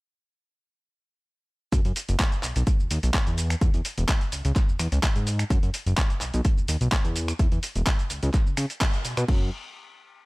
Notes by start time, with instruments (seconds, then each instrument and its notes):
1.72 analog synth bass F#2, kick, closed hi-hat, shaker
1.85 analog synth bass F#2, closed hi-hat, shaker
1.96 open hi-hat, shaker
2.09 analog synth bass F#1, closed hi-hat, shaker
2.20 kick, clap, closed hi-hat, shaker
2.32 closed hi-hat, shaker
2.43 analog synth bass B1, clap, open hi-hat, shaker
2.56 analog synth bass B1, closed hi-hat, shaker
2.67 kick, closed hi-hat, shaker
2.80 analog synth bass D#2, shaker
2.91 analog synth bass D#2, open hi-hat, shaker
3.03 analog synth bass B1, closed hi-hat, shaker
3.14 kick, clap, closed hi-hat, shaker
3.27 analog synth bass E2, closed hi-hat, shaker
3.38 open hi-hat, shaker
3.50 finger snap, closed hi-hat, shaker
3.61 analog synth bass E2, kick, closed hi-hat, shaker
3.74 analog synth bass E2, closed hi-hat, shaker
3.85 open hi-hat, shaker
3.98 analog synth bass E1, closed hi-hat, shaker
4.08 kick, clap, closed hi-hat, shaker
4.21 closed hi-hat, shaker
4.32 analog synth bass C#2, open hi-hat, shaker
4.45 analog synth bass C#2, closed hi-hat, shaker
4.56 kick, clap, closed hi-hat, shaker
4.69 analog synth bass E2, shaker
4.79 analog synth bass E2, finger snap, open hi-hat, shaker
4.92 analog synth bass C#2, closed hi-hat, shaker
5.03 kick, clap, closed hi-hat, shaker
5.16 analog synth bass G#2, closed hi-hat, shaker
5.27 open hi-hat, shaker
5.39 finger snap, closed hi-hat, shaker
5.50 analog synth bass F#2, kick, closed hi-hat, shaker
5.63 analog synth bass F#2, closed hi-hat, shaker
5.74 open hi-hat, shaker
5.86 analog synth bass F#1, closed hi-hat, shaker
5.97 kick, clap, closed hi-hat, shaker
6.10 closed hi-hat, shaker
6.21 analog synth bass B1, clap, open hi-hat, shaker
6.34 analog synth bass B1, closed hi-hat, shaker
6.45 kick, closed hi-hat, shaker
6.57 analog synth bass D#2, shaker
6.68 analog synth bass D#2, open hi-hat, shaker
6.81 analog synth bass B1, closed hi-hat, shaker
6.92 kick, clap, closed hi-hat, shaker
7.05 analog synth bass E2, closed hi-hat, shaker
7.16 open hi-hat, shaker
7.28 finger snap, closed hi-hat, shaker
7.39 analog synth bass E2, kick, closed hi-hat, shaker
7.52 analog synth bass E2, closed hi-hat, shaker
7.63 open hi-hat, shaker
7.76 analog synth bass E1, closed hi-hat, shaker
7.86 kick, clap, closed hi-hat, shaker
7.99 closed hi-hat, shaker
8.10 analog synth bass C#2, open hi-hat, shaker
8.23 analog synth bass C#2, closed hi-hat, shaker
8.34 kick, clap, closed hi-hat, shaker
8.46 analog synth bass C#3, shaker
8.57 analog synth bass C#3, finger snap, open hi-hat, shaker
8.70 closed hi-hat, shaker
8.81 kick, clap, closed hi-hat, shaker
8.94 closed hi-hat, shaker
9.05 analog synth bass B2, open hi-hat, shaker
9.17 analog synth bass B2, finger snap, closed hi-hat, shaker
9.28 analog synth bass F#2, kick, crash